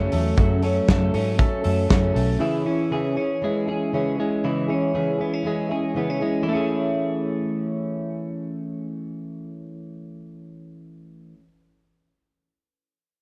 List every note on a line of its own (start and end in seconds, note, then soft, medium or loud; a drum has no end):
0.00 0.12 F#2 medium
0.00 0.12 C#3 medium
0.00 0.13 F#3 medium
0.00 0.37 F#3 medium
0.00 0.12 A3 medium
0.00 0.13 A3 medium
0.00 0.13 C#4 medium
0.00 0.11 A4 medium
0.00 0.88 A4 medium
0.12 0.33 E2 medium
0.12 0.38 F#3 soft
0.12 0.39 A3 soft
0.12 0.38 C#4 soft
0.12 0.37 A4 soft
0.12 open hi-hat medium
0.37 0.79 F#2 medium
0.37 0.63 F#2 medium
0.37 0.63 C#3 medium
0.37 0.63 F#3 medium
0.37 0.64 A3 medium
0.37 0.63 C#4 medium
0.37 0.62 A4 medium
0.37 kick medium
0.37 closed hi-hat medium
0.63 0.89 F#3 soft
0.63 0.89 A3 soft
0.63 0.89 C#4 soft
0.63 0.88 A4 medium
0.63 open hi-hat medium
0.88 1.09 F#2 loud
0.88 1.14 F#2 medium
0.88 1.14 C#3 medium
0.88 1.14 F#3 medium
0.88 1.14 A3 medium
0.88 1.14 C#4 medium
0.88 1.13 A4 medium
0.88 kick medium
0.88 snare loud
0.88 closed hi-hat medium
1.14 1.45 G#2 medium
1.14 1.36 F#3 soft
1.14 1.37 A3 soft
1.14 1.39 C#4 soft
1.14 1.39 A4 soft
1.14 open hi-hat medium
1.38 1.63 F#3 medium
1.38 1.64 A3 medium
1.38 1.64 C#4 medium
1.38 1.63 A4 medium
1.38 kick medium
1.38 closed hi-hat medium
1.64 1.86 F#2 medium
1.64 1.88 F#3 soft
1.64 1.89 A3 soft
1.64 1.89 C#4 soft
1.64 1.89 A4 medium
1.64 open hi-hat medium
1.89 2.14 F#2 medium
1.89 2.11 F#2 medium
1.89 2.15 C#3 medium
1.89 2.15 F#3 medium
1.89 2.15 A3 medium
1.89 2.14 C#4 medium
1.89 2.13 A4 medium
1.89 kick loud
1.89 snare loud
1.89 closed hi-hat medium
2.14 2.36 B1 medium
2.14 2.39 F#3 soft
2.14 2.40 A3 soft
2.14 2.39 C#4 soft
2.14 2.40 A4 soft
2.14 open hi-hat medium
2.39 2.65 C#3 medium
2.39 2.65 E3 medium
2.39 2.65 C#4 medium
2.39 2.65 E4 medium
2.39 2.64 G#4 medium
2.66 2.91 C#4 soft
2.66 2.92 E4 soft
2.66 2.91 G#4 soft
2.91 3.16 C#3 medium
2.91 3.17 E3 medium
2.91 3.17 C#4 medium
2.91 3.17 E4 medium
2.91 3.15 G#4 medium
3.16 3.42 C#4 soft
3.16 3.43 E4 soft
3.16 3.41 G#4 medium
3.42 3.67 E3 medium
3.42 4.19 G#3 medium
3.42 3.68 C#4 medium
3.42 3.67 E4 medium
3.42 3.66 G#4 medium
3.67 3.93 C#4 soft
3.67 3.93 E4 soft
3.67 3.92 G#4 medium
3.93 4.18 C#3 medium
3.93 4.18 E3 medium
3.93 4.19 C#4 medium
3.93 4.18 E4 medium
3.93 4.16 G#4 medium
4.18 5.47 G#3 medium
4.18 4.43 C#4 soft
4.18 4.44 E4 soft
4.18 4.43 G#4 soft
4.44 4.69 C#3 medium
4.44 4.69 E3 medium
4.44 4.69 C#4 medium
4.44 4.69 E4 medium
4.44 4.67 G#4 medium
4.68 4.94 C#4 soft
4.68 4.94 E4 soft
4.68 4.94 G#4 medium
4.94 5.19 C#3 medium
4.94 5.20 E3 medium
4.94 5.20 C#4 medium
4.94 5.19 E4 medium
4.94 5.17 G#4 medium
5.18 5.34 B3 medium
5.18 5.43 C#4 soft
5.18 5.44 E4 soft
5.18 5.44 G#4 soft
5.34 5.96 C#4 soft
5.43 5.70 E3 medium
5.43 6.22 G#3 medium
5.43 5.70 C#4 medium
5.43 5.70 E4 medium
5.43 5.68 G#4 medium
5.69 5.95 C#4 soft
5.69 5.95 E4 soft
5.69 5.95 G#4 soft
5.94 6.21 C#3 medium
5.94 6.21 E3 medium
5.94 6.10 B3 medium
5.94 6.21 C#4 medium
5.94 6.21 E4 medium
5.94 6.19 G#4 medium
6.10 6.52 C#4 soft
6.21 6.48 G#3 soft
6.21 6.46 C#4 soft
6.21 6.47 E4 soft
6.21 6.46 G#4 medium
6.42 11.33 E3 medium
6.42 11.33 A3 medium
6.48 11.39 A3 medium
6.48 11.38 C#4 medium
6.48 11.42 E4 medium
6.53 11.43 C#4 medium
6.53 11.45 G#4 medium